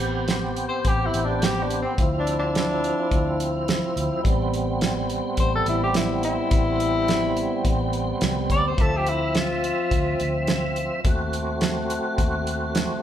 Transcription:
0.00 0.64 A1 medium
0.00 1.94 B3 medium
0.00 1.94 C4 medium
0.00 1.95 G4 medium
0.00 closed hi-hat medium
0.28 snare loud
0.28 closed hi-hat medium
0.56 closed hi-hat medium
0.69 0.89 C5 medium
0.85 1.08 A1 medium
0.85 1.08 G4 medium
0.85 kick medium
0.85 closed hi-hat medium
1.06 1.27 E4 medium
1.14 1.83 A1 medium
1.14 closed hi-hat medium
1.25 1.45 D4 medium
1.42 1.64 G4 medium
1.42 snare loud
1.42 closed hi-hat medium
1.63 1.80 D4 medium
1.70 closed hi-hat medium
1.82 1.99 C4 medium
1.97 2.91 D2 medium
1.97 4.20 F3 medium
1.97 4.21 C4 medium
1.97 4.22 E4 medium
1.97 kick medium
1.97 closed hi-hat medium
2.19 2.36 D4 medium
2.27 closed hi-hat medium
2.39 3.47 D4 medium
2.55 snare loud
2.55 closed hi-hat medium
2.84 closed hi-hat medium
3.11 3.81 D2 medium
3.11 kick medium
3.11 closed hi-hat medium
3.40 closed hi-hat medium
3.68 snare loud
3.68 closed hi-hat medium
3.96 4.09 D2 medium
3.96 closed hi-hat medium
4.23 5.18 A1 loud
4.23 8.73 G3 medium
4.23 8.74 B3 medium
4.23 8.74 C4 medium
4.23 kick medium
4.23 closed hi-hat medium
4.54 closed hi-hat medium
4.81 snare loud
4.81 closed hi-hat medium
5.10 closed hi-hat medium
5.37 5.61 A1 medium
5.37 5.53 C5 medium
5.37 kick medium
5.37 closed hi-hat medium
5.55 5.66 A4 medium
5.66 6.36 A1 medium
5.66 5.82 E4 medium
5.66 closed hi-hat medium
5.84 5.95 G4 medium
5.94 6.23 E4 medium
5.94 snare loud
5.94 closed hi-hat medium
6.23 7.90 E4 loud
6.23 closed hi-hat medium
6.51 7.44 A1 medium
6.51 kick loud
6.51 closed hi-hat medium
6.80 closed hi-hat medium
7.08 snare medium
7.08 closed hi-hat medium
7.37 closed hi-hat medium
7.65 8.11 A1 medium
7.65 kick medium
7.65 closed hi-hat medium
7.93 closed hi-hat medium
8.21 8.47 C2 medium
8.21 snare loud
8.21 closed hi-hat medium
8.50 8.75 D2 medium
8.50 8.65 D5 loud
8.50 kick medium
8.50 closed hi-hat medium
8.67 8.83 C5 medium
8.77 9.71 D2 medium
8.77 11.00 F3 medium
8.77 11.01 C4 medium
8.77 11.01 E5 medium
8.77 kick loud
8.77 closed hi-hat medium
8.81 8.98 A4 medium
8.97 9.11 G4 medium
9.06 9.39 E4 medium
9.06 closed hi-hat medium
9.35 10.46 F4 medium
9.35 snare loud
9.35 closed hi-hat medium
9.64 closed hi-hat medium
9.91 10.15 D2 medium
9.91 kick medium
9.91 closed hi-hat medium
10.20 10.89 D2 medium
10.20 closed hi-hat medium
10.47 snare loud
10.47 closed hi-hat medium
10.76 closed hi-hat medium
11.04 11.98 D#2 medium
11.04 13.02 A3 medium
11.04 13.02 C4 medium
11.04 13.02 F#4 medium
11.04 kick loud
11.04 closed hi-hat medium
11.33 closed hi-hat medium
11.61 snare loud
11.61 closed hi-hat medium
11.90 closed hi-hat medium
12.18 12.88 D#2 medium
12.18 kick medium
12.18 closed hi-hat medium
12.47 closed hi-hat medium
12.75 snare loud
12.75 closed hi-hat medium

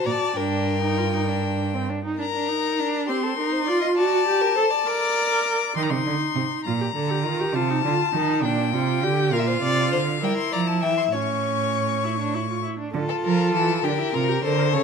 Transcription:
0.00 0.36 F#4 medium
0.00 0.13 A#5 medium
0.06 0.14 A#2 medium
0.06 0.38 D5 medium
0.12 0.37 A5 medium
0.36 1.85 G2 medium
0.36 0.81 D4 medium
0.36 1.88 A#4 medium
0.36 1.86 G5 medium
0.82 0.99 D#4 medium
0.98 1.15 F4 medium
1.13 1.30 D#4 medium
1.28 1.75 D4 medium
1.74 1.91 C4 medium
1.90 2.04 D4 medium
2.04 2.18 D#4 medium
2.19 2.25 D4 medium
2.19 3.05 A#4 medium
2.19 3.05 A#5 medium
2.35 2.50 D4 medium
2.48 2.81 D#4 medium
2.79 3.10 D4 medium
3.08 3.38 C4 medium
3.08 3.25 G4 medium
3.08 3.96 C6 medium
3.23 3.37 A4 medium
3.37 3.69 D#4 medium
3.37 3.54 A#4 medium
3.52 3.66 C5 medium
3.67 4.00 F4 medium
3.67 3.81 D5 medium
3.81 3.88 D#5 medium
3.96 4.27 F#4 medium
3.96 4.43 D5 medium
3.96 4.89 A5 medium
4.27 4.56 G4 medium
4.41 4.57 A#4 medium
4.56 4.64 A4 loud
4.56 4.72 C5 medium
4.71 5.76 D5 medium
4.86 5.74 A#4 loud
4.86 5.76 D6 medium
5.76 5.92 D#3 medium
5.76 6.62 D#4 medium
5.76 5.84 C6 medium
5.83 5.91 A#5 medium
5.90 6.05 C3 medium
5.90 6.65 C6 medium
6.06 6.14 D3 medium
6.36 6.44 C3 medium
6.65 6.95 A#2 medium
6.65 6.72 F4 medium
6.65 7.56 A#5 medium
6.80 6.86 G4 medium
6.95 7.26 D3 medium
6.95 7.12 A4 medium
7.10 7.25 G4 medium
7.25 7.56 D#3 medium
7.25 7.42 F4 medium
7.40 7.56 G4 medium
7.55 7.84 C3 medium
7.55 7.71 F4 medium
7.55 8.43 A5 medium
7.70 7.84 D#4 medium
7.84 7.92 D3 medium
7.84 8.14 F4 medium
8.14 8.45 D#3 medium
8.14 8.46 D#4 medium
8.43 8.74 A#2 medium
8.43 8.73 D4 medium
8.43 9.34 G5 medium
8.73 9.04 C3 medium
8.73 9.05 F4 medium
9.03 9.34 D3 medium
9.03 9.35 G4 medium
9.32 9.62 A#2 medium
9.32 10.22 F4 medium
9.32 9.49 A#4 medium
9.32 9.41 F5 medium
9.39 9.48 E5 medium
9.47 9.62 C5 medium
9.47 10.25 F5 medium
9.62 9.94 C3 medium
9.62 9.92 D5 medium
9.92 10.21 D3 medium
9.92 10.00 C5 medium
10.22 10.30 G3 medium
10.22 11.15 E4 medium
10.22 10.52 A#4 medium
10.22 10.37 G5 medium
10.37 10.54 C6 medium
10.52 10.84 F3 medium
10.52 10.60 D5 medium
10.52 10.69 A#5 medium
10.67 10.84 A5 medium
10.82 11.12 E3 medium
10.82 11.14 E5 medium
10.82 10.97 G5 medium
10.97 11.03 C6 medium
11.13 12.61 A2 medium
11.13 12.06 C#4 medium
11.13 12.64 C#5 medium
11.13 12.61 C#6 medium
12.04 12.18 E4 medium
12.19 12.36 D4 medium
12.35 12.49 E4 medium
12.50 12.63 F4 medium
12.64 12.79 E4 medium
12.79 12.94 D4 medium
12.94 13.02 D3 medium
12.94 13.86 F4 medium
12.94 13.80 A4 medium
13.09 13.15 A4 medium
13.24 13.53 F3 medium
13.24 13.54 A#4 medium
13.54 13.83 E3 medium
13.54 13.86 A4 medium
13.84 13.92 D3 medium
13.84 14.00 D4 medium
13.84 14.15 G4 medium
13.84 14.71 A#4 medium
13.99 14.13 E4 medium
14.13 14.43 C3 medium
14.13 14.30 F4 medium
14.13 14.43 A#4 medium
14.29 14.43 G4 medium
14.44 14.75 D3 medium
14.44 14.50 A4 medium
14.44 14.75 C5 medium
14.58 14.64 A#4 medium
14.73 14.83 C#3 medium
14.73 14.83 A4 medium
14.73 14.83 C#5 medium

